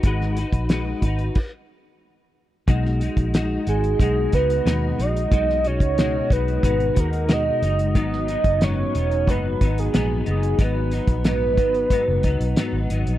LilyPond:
<<
  \new Staff \with { instrumentName = "Soft synth lead" } { \time 4/4 \key b \major \tempo 4 = 91 r1 | r4. gis'8 gis'8 b'4 dis''8~ | dis''8 cis''4 b'4 ais'8 dis''4 | dis''4 cis''4 b'8. gis'8. gis'8 |
b'4 b'2~ b'8 r8 | }
  \new Staff \with { instrumentName = "Clean electric guitar" } { \time 4/4 \key b \major <gis dis' fis' b'>8 <dis' fis' b'>8 <gis dis' fis' b'>8 <dis' fis' b'>8 r2 | <b, gis dis' fis'>8 <gis dis' fis'>8 <gis dis' fis'>8 <gis dis' fis'>8 <b, gis dis' fis'>8 <gis dis' fis'>8 <b, gis dis' fis'>8 <gis dis' fis'>8 | <b, gis dis' fis'>8 <gis dis' fis'>8 <b, gis dis' fis'>8 <gis dis' fis'>8 <b, gis dis' fis'>8 <gis dis' fis'>8 <b, gis dis' fis'>8 <gis dis' fis'>8 | <gis, fis b dis'>8 <fis b dis'>8 <gis, fis b dis'>8 <fis b dis'>8 <gis, fis b dis'>8 <fis b dis'>8 <gis, fis b dis'>8 <fis b dis'>8 |
<gis, fis b dis'>8 <fis b dis'>8 <gis, fis b dis'>8 <fis b dis'>8 <gis, fis b dis'>8 <fis b dis'>8 <gis, fis b dis'>8 <fis b dis'>8 | }
  \new Staff \with { instrumentName = "Fingered electric bass" } { \clef bass \time 4/4 \key b \major gis,,8. ais,,8. gis,,8 r2 | b,,8. ais,,8. gis,,8 b,,8 cis,8 dis,8 ais,,8 | b,,8. cis,8. b,,8 gis,,8 dis,4 fis,,8 | gis,,8. fis,,8. e,,8 fis,,8 gis,,8 ais,,8 fis,,8 |
gis,,8. ais,,8. gis,,8 r16 fis,,16 cis,16 b,,16 r16 gis,,16 gis,,16 ais,,16 | }
  \new DrumStaff \with { instrumentName = "Drums" } \drummode { \time 4/4 <hh bd>16 sn16 hh16 <hh bd>16 <hh sn>8 <hh bd>16 hh16 <cymc bd>4 r4 | <hh bd>16 sn16 hh16 <hh bd>16 <hh sn>8 hh16 hh16 <hh bd>8 <hh bd>16 hh16 <hh sn>8 hh16 hh16 | <hh bd>16 sn16 hh16 <hh bd>16 <hh sn>8 <hh bd>16 hh16 <hh bd>16 hh16 <hh bd>16 hh16 <hh sn>8 hh16 hh16 | <hh bd>16 sn16 hh16 <hh bd>16 <hh sn>8 hh16 hh16 <hh bd>8 <hh bd>16 hh16 <hh sn>8 hh16 hh16 |
<hh bd>8 hh16 <hh bd>16 <hh sn>8 <hh bd>16 hh16 <hh bd>8 <hh bd>16 hh16 <hh sn>8 hh16 hh16 | }
>>